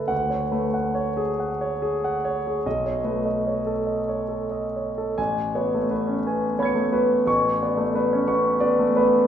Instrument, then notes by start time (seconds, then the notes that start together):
grand piano
Already playing: A4 B4 E5
0.08 D2 F#5
0.30 C#5
0.52 A3 B4
0.74 F#5
0.95 C#5
1.17 G#4
1.40 F#5
1.61 C#5
1.82 G#4
2.04 F#5
2.25 C#5
2.47 G#4
2.66 B1 D#5
2.86 C#5
3.04 A3 B4
3.25 D#5
3.47 C#5
3.67 A4
3.87 D#5
4.09 C#5
4.29 A4
4.51 D#5
4.76 C#5
4.98 A4
5.18 A1 G#5
5.55 B3 C#5
5.74 A3
5.90 B3 B4
6.07 C#4
6.27 B3 G#5
6.59 B3 C#5 B5 G#6
6.65 C#7
6.75 A3
6.93 B3 B4
7.27 A1 C#6
7.63 B3 D5
7.77 A3
7.95 B3 B4
8.13 C#4
8.28 B3 C#6
8.60 B3 D5
8.79 A3
8.96 B3 B4